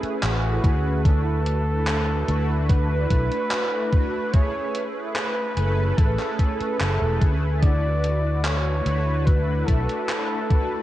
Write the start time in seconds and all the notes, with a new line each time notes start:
Already playing: A3 C#4 E4 G#4 B4
0.03 muted fingered electric bass stroke, closed hi-hat
0.22 A1 F#4, clap, closed hi-hat
0.63 D2 A3 C#4 E4 G#4 B4, kick, closed hi-hat
1.04 A3 D4 E4 F#4 A4 B4, kick, closed hi-hat
1.46 closed hi-hat
1.87 clap, closed hi-hat
2.27 D2 A3 D4 E4 F#4 B4, closed hi-hat
2.69 B4, kick, closed hi-hat
3.10 B1, kick, closed hi-hat
3.32 closed hi-hat
3.51 clap, closed hi-hat
3.92 A3 D4 E4 F#4 B4, kick, closed hi-hat
4.32 A3 C#4 E4 G#4 B4 C#5, kick, closed hi-hat
4.75 closed hi-hat
5.16 B4, clap, closed hi-hat
5.56 F#1 A3 C#4 E4 A4 B4, closed hi-hat
5.98 A1 A4, kick, closed hi-hat
6.20 clap
6.39 kick, closed hi-hat
6.61 muted fingered electric bass stroke, closed hi-hat
6.80 F#1 A4, clap, closed hi-hat
7.02 E1
7.21 D2 A3 C#4 E4 G#4 B4, kick, closed hi-hat
7.61 A3 D4 E4 F#4 B4 D5, kick, closed hi-hat
8.04 closed hi-hat
8.44 C#5, clap, closed hi-hat
8.85 D2 A3 D4 E4 F#4 B4, closed hi-hat
9.26 B4, kick, closed hi-hat
9.68 B1 A4, kick, closed hi-hat
9.89 closed hi-hat
10.09 clap, closed hi-hat
10.50 A3 D4 E4 F#4 B4, kick, closed hi-hat